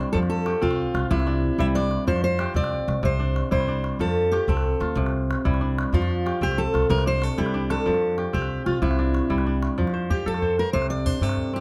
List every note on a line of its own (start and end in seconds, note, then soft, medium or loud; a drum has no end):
0.00 0.19 C3 medium
0.00 0.19 G3 medium
0.00 0.50 C4 medium
0.00 1.26 D4 medium
0.00 0.20 E4 medium
0.00 0.12 C5 medium
0.13 0.51 F2 medium
0.13 1.15 F3 medium
0.13 0.18 A4 medium
0.13 calabash thump medium
0.23 calabash click soft
0.30 0.63 A4 medium
0.30 calabash click soft
0.46 1.87 G4 medium
0.46 calabash click medium
0.62 0.87 C2 medium
0.62 2.42 C4 medium
0.62 1.07 F4 medium
0.62 calabash thump medium
0.62 calabash click soft
0.71 calabash click soft
0.87 calabash click soft
0.94 1.07 C2 medium
0.94 1.65 F4 medium
0.94 calabash click medium
1.11 1.48 C2 loud
1.11 2.12 C3 medium
1.11 1.60 E4 medium
1.11 calabash thump medium
1.20 calabash click soft
1.27 1.75 D4 medium
1.43 calabash thump soft
1.58 1.96 C2 medium
1.58 2.12 G3 medium
1.58 2.14 E4 medium
1.58 1.65 E5 medium
1.58 calabash thump soft
1.75 3.19 D4 medium
1.75 2.07 D5 medium
1.75 calabash click soft
1.91 calabash click soft
2.07 2.44 F2 medium
2.07 3.09 F3 medium
2.07 2.22 C5 medium
2.07 calabash thump medium
2.16 calabash click medium
2.24 2.56 C5 medium
2.24 calabash click soft
2.39 3.81 G4 medium
2.39 calabash click medium
2.54 2.80 C2 medium
2.54 4.36 C4 medium
2.54 3.05 D5 medium
2.54 calabash thump medium
2.64 calabash click soft
2.88 3.00 C2 medium
2.88 calabash click medium
3.03 3.40 C2 loud
3.03 4.05 C3 medium
3.03 3.49 C5 medium
3.03 calabash thump medium
3.19 3.68 D4 medium
3.36 calabash click medium
3.51 3.89 C2 medium
3.51 4.05 G3 medium
3.51 4.06 E4 medium
3.51 4.00 C5 medium
3.51 calabash thump medium
3.60 calabash click soft
3.68 5.36 D4 medium
3.84 calabash click medium
3.99 4.37 F2 medium
3.99 5.02 F3 medium
3.99 4.34 A4 medium
3.99 calabash thump soft
4.08 calabash click soft
4.32 4.49 G4 medium
4.32 5.74 G4 medium
4.32 calabash click medium
4.48 4.73 C2 medium
4.48 6.29 C4 medium
4.48 5.09 A4 medium
4.48 calabash thump medium
4.57 calabash click soft
4.80 4.93 D2 medium
4.80 5.51 F4 medium
4.80 calabash click medium
4.95 5.33 C2 loud
4.95 5.99 C3 medium
4.95 calabash thump medium
5.06 calabash click soft
5.31 calabash click medium
5.45 5.82 C2 medium
5.45 5.99 G3 medium
5.45 6.00 E4 medium
5.45 calabash thump medium
5.54 calabash click soft
5.61 7.06 D4 medium
5.79 calabash click medium
5.93 6.30 F2 medium
5.93 6.95 F3 medium
5.93 6.43 F4 medium
5.93 calabash thump medium
6.02 calabash click medium
6.11 calabash click soft
6.26 7.67 G4 medium
6.26 calabash click medium
6.41 6.66 C2 medium
6.41 8.22 C4 medium
6.41 6.59 G4 medium
6.41 calabash thump medium
6.51 calabash click soft
6.58 6.90 A4 medium
6.74 6.86 C2 medium
6.74 7.44 F4 medium
6.74 calabash click medium
6.89 7.27 C2 loud
6.89 7.91 C3 medium
6.89 7.07 A#4 loud
6.89 calabash thump medium
6.99 calabash click soft
7.06 7.54 D4 medium
7.06 7.23 C5 loud
7.22 7.39 A4 medium
7.22 calabash click medium
7.38 7.75 C2 medium
7.38 7.91 G3 medium
7.38 7.92 E4 medium
7.38 7.71 G4 medium
7.38 calabash thump medium
7.46 calabash click soft
7.54 8.98 D4 medium
7.70 8.15 A4 medium
7.70 calabash click medium
7.86 8.24 F2 medium
7.86 8.87 F3 medium
7.86 calabash thump medium
7.94 calabash click soft
8.02 calabash click soft
8.10 calabash click soft
8.18 9.59 G4 medium
8.18 calabash click medium
8.33 8.59 C2 medium
8.33 10.13 C4 medium
8.33 8.66 G4 medium
8.33 calabash thump soft
8.42 calabash click soft
8.59 calabash click soft
8.66 8.79 C2 medium
8.66 8.82 F4 medium
8.66 9.36 F4 medium
8.66 calabash click medium
8.82 9.19 C2 loud
8.82 9.83 C3 medium
8.82 9.42 E4 medium
8.82 calabash thump medium
8.91 calabash click soft
8.99 9.46 D4 medium
9.07 calabash click soft
9.15 calabash click medium
9.30 9.67 C2 medium
9.30 9.83 G3 medium
9.30 9.84 E4 medium
9.30 calabash thump medium
9.38 calabash click soft
9.46 11.05 D4 medium
9.63 calabash click medium
9.78 10.15 F2 medium
9.78 10.79 F3 medium
9.78 calabash thump medium
9.87 calabash click soft
9.94 10.42 C5 medium
9.94 calabash click soft
10.02 calabash click soft
10.10 11.51 G4 medium
10.10 10.27 G4 medium
10.10 calabash thump medium
10.26 10.63 F2 medium
10.26 11.58 A4 medium
10.26 10.59 A4 medium
10.34 calabash click soft
10.42 11.60 C5 medium
10.42 calabash thump medium
10.58 10.73 A#4 medium
10.58 calabash click soft
10.73 11.10 C2 medium
10.73 11.21 C3 medium
10.73 10.90 C5 loud
10.73 calabash thump medium
10.82 calabash click soft
10.90 11.06 D5 loud
11.06 11.60 D4 medium
11.06 11.23 C5 medium
11.06 calabash thump medium
11.21 11.58 G2 medium
11.21 11.60 C3 medium
11.21 11.55 A4 medium
11.21 calabash click soft
11.29 calabash click soft
11.37 calabash thump medium
11.46 calabash click soft
11.53 11.60 C4 medium
11.53 11.60 G4 medium
11.53 calabash click soft